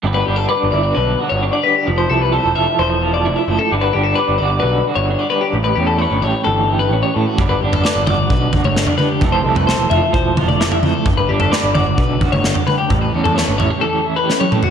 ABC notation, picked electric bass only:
X:1
M:4/4
L:1/16
Q:1/4=130
K:Glyd
V:1 name="Picked electric bass" clef=bass
G,,,2 G,,,2 z G,,, G,,,2 B,,,2 z G,,,2 z3 | =F,,,2 =C,,3 E,,, F,,, z E,,,4 F,,, z ^F,,, z | G,,,2 G,,,2 z G,,, G,,,2 B,,,2 z G,,,2 z3 | A,,,2 E,,3 G,,, A,,, z G,,,4 A,,, z A,, z |
G,,,2 G,,,2 z G,,, G,,,2 B,,,2 z G,,,2 z3 | =F,,,2 =C,,3 E,,, F,,, z E,,,4 F,,, z =F,, z | G,,,2 G,,,2 z G,,, G,,,2 B,,,2 z G,,,2 z3 | A,,,2 E,,3 G,,, A,,, z8 z |]